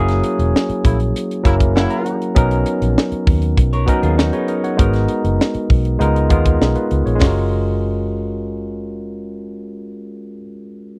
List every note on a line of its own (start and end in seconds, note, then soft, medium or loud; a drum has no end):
0.00 0.21 F#1 loud
0.00 0.79 F#3 medium
0.00 0.79 A#3 medium
0.00 0.79 C#4 medium
0.00 0.79 E4 medium
0.00 0.80 G#4 loud
0.08 snare soft
0.08 closed hi-hat medium
0.24 closed hi-hat medium
0.39 0.52 E1 medium
0.39 closed hi-hat medium
0.56 snare medium
0.69 muted fingered electric bass stroke soft
0.69 closed hi-hat soft
0.85 1.12 A#1 medium
0.85 0.98 C#3 medium
0.85 0.98 A#3 medium
0.85 0.98 E4 medium
0.85 kick medium
0.85 closed hi-hat medium
1.00 closed hi-hat soft
1.16 closed hi-hat medium
1.31 closed hi-hat medium
1.43 1.86 F#1 medium
1.43 1.55 C#3 medium
1.43 2.08 F#3 medium
1.43 2.09 A#3 medium
1.43 1.55 A#3 medium
1.43 2.09 C#4 medium
1.43 1.55 E4 medium
1.43 2.10 E4 medium
1.43 2.10 A#4 medium
1.43 kick medium
1.43 closed hi-hat medium
1.60 kick medium
1.60 closed hi-hat medium
1.76 2.19 C#3 medium
1.76 2.19 A#3 medium
1.76 2.19 E4 medium
1.76 1.90 F#5 medium
1.76 snare loud
1.90 2.33 A#5 medium
1.90 closed hi-hat medium
2.06 closed hi-hat medium
2.22 closed hi-hat soft
2.35 2.63 B1 loud
2.35 3.21 F#3 medium
2.35 3.21 B3 medium
2.35 3.22 C#4 medium
2.35 3.22 D#4 medium
2.35 3.22 A#4 loud
2.35 kick loud
2.35 closed hi-hat medium
2.51 closed hi-hat medium
2.66 closed hi-hat medium
2.82 2.95 A#1 medium
2.82 closed hi-hat medium
2.98 snare loud
3.12 muted fingered electric bass stroke soft
3.12 closed hi-hat medium
3.27 3.54 D#2 medium
3.27 kick loud
3.27 open hi-hat soft
3.42 closed hi-hat medium
3.57 3.85 B1 medium
3.57 kick medium
3.57 closed hi-hat medium
3.73 3.87 A#4 medium
3.73 3.87 C#5 medium
3.73 closed hi-hat soft
3.86 4.51 F#3 medium
3.86 4.51 B3 medium
3.86 4.52 C#4 medium
3.86 4.52 D#4 medium
3.86 4.03 F#4 medium
3.86 4.02 A#4 medium
3.86 4.19 A#4 medium
3.86 kick medium
3.86 closed hi-hat medium
4.03 4.30 D#2 medium
4.03 4.18 F4 medium
4.03 4.17 G#4 medium
4.03 closed hi-hat soft
4.18 4.32 D#4 medium
4.18 4.32 F#4 medium
4.18 snare loud
4.33 4.77 B3 medium
4.33 4.76 D#4 medium
4.33 4.48 G#4 medium
4.33 4.48 C#5 medium
4.33 closed hi-hat soft
4.48 4.63 A#4 medium
4.48 4.63 D#5 medium
4.48 closed hi-hat medium
4.64 4.93 C#5 soft
4.64 4.93 F#5 medium
4.64 closed hi-hat soft
4.77 5.06 G#1 loud
4.77 5.63 G#3 medium
4.77 5.64 B3 medium
4.77 5.64 D#4 medium
4.77 5.64 F#4 medium
4.77 5.65 A#4 medium
4.77 kick loud
4.77 closed hi-hat medium
4.94 snare soft
4.94 closed hi-hat medium
5.08 closed hi-hat medium
5.24 5.38 F#1 medium
5.24 closed hi-hat medium
5.41 snare medium
5.54 muted fingered electric bass stroke soft
5.54 closed hi-hat soft
5.70 5.97 B1 medium
5.70 kick medium
5.70 open hi-hat soft
5.85 closed hi-hat soft
5.99 6.27 C#2 loud
5.99 6.24 G#3 medium
5.99 6.24 B3 medium
5.99 6.24 D#4 medium
5.99 6.25 F4 medium
5.99 6.25 A#4 medium
5.99 closed hi-hat medium
6.16 closed hi-hat soft
6.29 6.58 D#2 medium
6.29 6.94 G#3 medium
6.29 6.94 B3 medium
6.29 6.61 D#4 medium
6.29 6.61 F4 medium
6.29 6.62 A#4 medium
6.29 kick medium
6.29 closed hi-hat medium
6.45 kick medium
6.45 closed hi-hat medium
6.61 6.74 B1 medium
6.61 6.76 D#4 medium
6.61 6.75 G#4 medium
6.61 snare medium
6.75 7.05 F4 medium
6.75 7.05 B4 medium
6.75 closed hi-hat soft
6.91 7.05 C#2 medium
6.91 closed hi-hat medium
7.06 7.20 A#1 medium
7.06 7.35 G#4 soft
7.06 7.35 C#5 medium
7.06 closed hi-hat soft
7.15 10.33 G#3 medium
7.15 10.36 C#4 medium
7.21 10.39 F#1 medium
7.21 10.39 F4 medium
7.21 10.42 F#4 medium
7.21 kick loud
7.21 snare medium
7.21 open hi-hat medium
7.27 10.45 A#4 medium